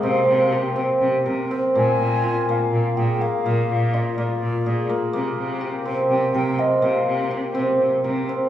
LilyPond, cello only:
\new Staff \with { instrumentName = "Cello" } { \clef bass \time 7/8 \key bes \mixolydian \tempo 4 = 124 c8 c4 c16 r16 c16 r16 c8 r8 | bes,8 bes,4 bes,16 r16 bes,16 r16 bes,8 r8 | bes,8 bes,4 bes,16 r16 bes,16 r16 bes,8 r8 | c8 c4 c16 r16 c16 r16 c8 r8 |
c8 c4 c16 r16 c16 r16 c8 r8 | }